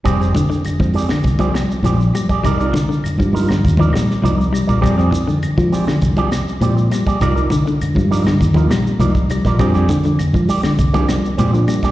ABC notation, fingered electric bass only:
X:1
M:4/4
L:1/16
Q:1/4=101
K:Fdor
V:1 name="Fingered electric bass" clef=bass
F,,,2 z3 F,, z2 C,,2 z2 B,,,2 z2 | C,,2 z3 G,,3 E,,2 B,,, z C,,2 z B,,, | F,,2 z3 F, z2 C,,2 z2 B,,2 z2 | C,,2 z3 G,,3 E,,2 B,,, z C,,2 z B,,, |
F,,2 z3 F, z2 C,,2 z2 B,,2 z2 |]